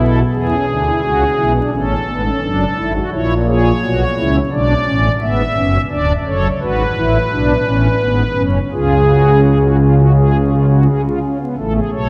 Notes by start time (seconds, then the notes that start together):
Already playing: B1 B2 E4 A4
0.32 E2 E3 B3 G#4
0.50 C#4
0.68 D2 D3 D4
0.85 E4
1.01 C#2 C#3 F#4
1.36 B1 B2 E4
1.54 D4
1.71 A1 A2 C#4 A4
2.06 G#1 G#2 B3
2.25 C#4
2.42 F#1 F#2 D4
2.77 G#1 G#2 E4
2.94 F#4
3.11 A#1 A#2 E4 C#5
3.46 G#4 C#5
3.81 B1 B2 F#4
4.16 C#2 C#3 E4
4.51 B1 B2 D4 D5
4.86 A1 A2 C#4
5.20 G#1 G#2 B3 E5
5.55 F#1 F#2 C#4
5.90 D1 D2 D4 D5
6.25 F#1 F#2 A4 C#5
6.60 G#1 G#2 F#4 B4
6.95 A1 A2 E4
7.31 B1 B2 D4
7.64 A1 A2 C#4
8.01 G#1 G#2 B3
8.36 F#1 F#2 C#4
8.72 C#2 C#3 F4 G#4
9.07 F#4
9.42 G#4
9.61 F#4
9.79 F4
9.96 F#4
10.15 G#4
10.50 F4
10.68 F#4
10.86 G#4
11.03 F4
11.22 C#4
11.40 B3
11.57 A1 A2 A3 A4
11.74 G#4
11.91 B1 B2 A4 C#5